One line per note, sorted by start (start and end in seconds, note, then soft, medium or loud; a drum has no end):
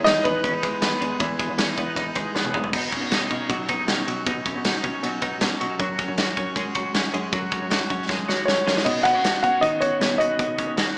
0.00 1.19 E3 medium
0.00 0.62 G#3 medium
0.00 0.23 D#4 loud
0.04 0.22 E2 loud
0.04 0.43 D#4 medium
0.04 0.25 D#5 loud
0.04 snare loud
0.04 ride medium
0.04 tambourine loud
0.23 0.41 E2 loud
0.23 2.30 B3 medium
0.23 0.81 B3 medium
0.23 2.31 B4 medium
0.23 kick medium
0.23 ride medium
0.23 tambourine medium
0.43 0.60 E2 loud
0.43 0.54 C#4 medium
0.43 kick medium
0.43 ride medium
0.43 tambourine medium
0.54 1.58 D#4 medium
0.63 0.79 E3 medium
0.63 1.00 G#3 medium
0.63 kick medium
0.63 ride medium
0.63 tambourine medium
0.82 0.98 E2 loud
0.82 1.77 B3 medium
0.82 snare loud
0.82 ride medium
0.82 tambourine medium
1.01 1.17 E2 loud
1.01 1.38 G#3 medium
1.01 ride medium
1.01 tambourine soft
1.20 1.36 E2 loud
1.20 2.73 E3 medium
1.20 kick loud
1.20 ride medium
1.39 2.14 G#3 medium
1.39 kick loud
1.39 ride medium
1.39 tambourine medium
1.49 1.57 E2 medium
1.58 1.74 E2 loud
1.58 1.68 C#4 medium
1.58 snare loud
1.58 ride medium
1.58 tambourine loud
1.68 1.95 D#4 medium
1.78 1.94 E2 loud
1.78 2.35 B3 medium
1.78 kick medium
1.78 ride medium
1.78 tambourine medium
1.96 2.12 E2 loud
1.96 2.73 D#4 medium
1.96 kick medium
1.96 ride medium
1.96 tambourine medium
2.15 2.32 E3 medium
2.15 2.53 G#3 medium
2.15 kick medium
2.15 ride medium
2.15 tambourine medium
2.35 2.51 E2 loud
2.35 2.92 B3 medium
2.35 snare medium
2.35 tambourine medium
2.45 high tom medium
2.54 2.70 E2 medium
2.54 2.77 G#3 medium
2.54 mid tom loud
2.64 floor tom loud
2.73 2.89 B2 loud
2.73 4.25 B2 medium
2.73 3.11 D#4 medium
2.73 kick loud
2.73 crash loud
2.73 tambourine soft
2.92 3.30 C#4 medium
2.92 kick loud
2.92 ride medium
2.92 tambourine medium
3.02 3.10 B2 medium
3.11 3.27 B2 medium
3.11 3.68 D#4 medium
3.11 snare loud
3.11 ride medium
3.11 tambourine medium
3.31 3.46 B2 loud
3.31 3.88 C#4 medium
3.31 kick medium
3.31 ride medium
3.31 tambourine medium
3.50 3.65 B2 loud
3.50 4.07 F#3 medium
3.50 kick medium
3.50 ride medium
3.50 tambourine soft
3.69 3.85 B3 medium
3.69 4.26 D#4 medium
3.69 kick medium
3.69 ride medium
3.69 tambourine medium
3.88 4.04 B2 loud
3.88 4.46 C#4 medium
3.88 snare loud
3.88 ride medium
3.88 tambourine medium
4.08 4.23 B2 loud
4.08 5.03 F#3 medium
4.08 ride medium
4.08 tambourine soft
4.26 4.42 B2 loud
4.26 5.80 B2 medium
4.26 4.64 D#4 medium
4.26 kick loud
4.26 ride medium
4.26 tambourine soft
4.45 4.84 C#4 medium
4.45 kick loud
4.45 ride medium
4.45 tambourine medium
4.56 4.63 B2 medium
4.64 4.81 B2 loud
4.64 5.21 D#4 medium
4.64 snare loud
4.64 ride medium
4.64 tambourine loud
4.83 5.00 B2 loud
4.83 5.41 C#4 medium
4.83 kick medium
4.83 ride medium
4.83 tambourine medium
5.03 5.19 B2 loud
5.03 5.60 F#3 medium
5.03 ride medium
5.03 tambourine medium
5.22 5.38 B3 medium
5.22 5.79 D#4 medium
5.22 kick medium
5.22 ride medium
5.22 tambourine medium
5.41 5.57 B2 loud
5.41 5.98 C#4 medium
5.41 snare loud
5.41 ride medium
5.41 tambourine medium
5.60 5.77 B2 loud
5.60 5.79 F#3 medium
5.60 ride medium
5.60 tambourine soft
5.79 5.95 F#2 loud
5.79 7.32 F#3 medium
5.79 6.17 F#4 medium
5.79 kick loud
5.79 ride medium
5.99 6.37 C#4 medium
5.99 kick loud
5.99 ride medium
5.99 tambourine medium
6.08 6.16 F#2 loud
6.17 6.34 F#2 loud
6.17 6.75 F#4 medium
6.17 snare loud
6.17 ride medium
6.17 tambourine loud
6.37 6.53 F#2 medium
6.37 6.94 C#4 medium
6.37 kick medium
6.37 ride medium
6.37 tambourine medium
6.56 6.72 F#2 loud
6.56 7.12 G#3 medium
6.56 kick medium
6.56 ride medium
6.56 tambourine medium
6.75 6.91 F#3 medium
6.75 7.33 F#4 medium
6.75 kick medium
6.75 ride medium
6.75 tambourine medium
6.94 7.11 F#2 loud
6.94 7.51 C#4 medium
6.94 snare loud
6.94 ride medium
6.94 tambourine medium
7.13 7.30 F#2 loud
7.13 8.08 G#3 medium
7.13 ride medium
7.33 7.49 F#2 loud
7.33 9.62 F#3 medium
7.33 7.70 F#4 medium
7.33 kick loud
7.33 ride medium
7.33 tambourine soft
7.52 7.89 C#4 medium
7.52 kick loud
7.52 ride medium
7.52 tambourine medium
7.61 7.69 F#2 medium
7.70 7.87 F#2 loud
7.70 8.28 F#4 medium
7.70 snare loud
7.70 ride medium
7.70 tambourine loud
7.90 8.06 F#2 loud
7.90 8.47 C#4 medium
7.90 kick medium
7.90 ride medium
7.90 tambourine medium
8.09 8.25 F#2 loud
8.09 8.65 G#3 medium
8.09 kick loud
8.09 snare medium
8.09 tambourine medium
8.28 8.44 F#3 loud
8.28 9.24 F#4 medium
8.28 snare medium
8.28 tambourine medium
8.45 8.64 F#2 medium
8.45 8.83 C#4 medium
8.45 9.05 C#4 medium
8.45 8.86 C#5 medium
8.45 snare loud
8.45 tambourine medium
8.66 8.83 F#2 loud
8.66 8.90 G#3 medium
8.66 snare loud
8.77 snare loud
8.85 10.38 B2 medium
8.85 9.02 B2 loud
8.85 9.03 D#4 medium
8.85 9.05 D#5 medium
8.85 kick loud
8.85 crash medium
9.03 9.15 B3 medium
9.03 9.40 F#4 medium
9.03 9.41 F#5 loud
9.03 kick loud
9.03 closed hi-hat medium
9.03 tambourine medium
9.15 9.23 B2 medium
9.15 9.42 C#4 medium
9.24 9.40 B2 medium
9.24 9.81 F#4 medium
9.24 snare loud
9.24 closed hi-hat loud
9.24 tambourine loud
9.42 9.59 B2 medium
9.42 10.58 C#4 medium
9.42 9.61 F#4 medium
9.42 9.61 F#5 loud
9.42 kick medium
9.42 closed hi-hat medium
9.42 tambourine medium
9.61 9.78 B2 loud
9.61 10.98 D#3 medium
9.61 9.79 D#4 medium
9.61 9.80 D#5 loud
9.61 kick medium
9.61 closed hi-hat medium
9.61 tambourine soft
9.80 9.98 B3 medium
9.80 10.17 C#4 medium
9.80 10.19 F#4 medium
9.80 10.21 C#5 medium
9.80 kick medium
9.80 closed hi-hat medium
9.80 tambourine soft
10.01 10.17 B2 medium
10.01 10.98 B3 medium
10.01 snare loud
10.01 closed hi-hat medium
10.01 tambourine medium
10.18 10.36 B2 medium
10.18 10.98 D#4 medium
10.18 10.76 F#4 medium
10.18 10.98 D#5 medium
10.18 closed hi-hat medium
10.39 10.98 B2 medium
10.39 10.55 B2 medium
10.39 kick loud
10.39 closed hi-hat medium
10.39 tambourine soft
10.58 10.96 C#4 medium
10.58 kick medium
10.58 closed hi-hat medium
10.58 tambourine medium
10.68 10.76 B2 medium
10.77 10.93 B2 medium
10.77 10.98 F#4 medium
10.77 snare loud
10.77 closed hi-hat medium
10.77 tambourine medium